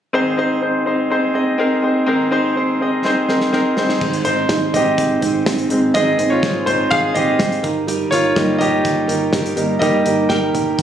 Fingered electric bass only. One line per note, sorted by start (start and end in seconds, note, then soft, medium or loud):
4.01 4.21 G#1 loud
4.25 4.45 G#1 medium
4.49 4.69 G#1 medium
4.73 4.93 G#1 medium
4.98 5.18 G#1 medium
5.22 5.42 G#1 medium
5.46 5.66 G#1 medium
5.70 5.90 G#1 loud
5.95 6.15 G#1 loud
6.18 6.39 G#1 medium
6.43 6.63 G#1 loud
6.67 6.87 G#1 medium
6.91 7.11 G#1 medium
7.15 7.35 G#1 medium
7.40 7.60 G#1 medium
7.64 8.04 G1 medium
8.12 8.32 G1 medium
8.37 8.56 G1 medium
8.61 8.81 G1 loud
8.85 9.05 G1 loud
9.09 9.29 G1 medium
9.33 9.53 G1 medium
9.57 9.77 G1 medium
9.82 10.02 G1 loud
10.06 10.26 G1 medium
10.30 10.50 G1 loud
10.54 10.74 G1 medium
10.79 10.82 G1 medium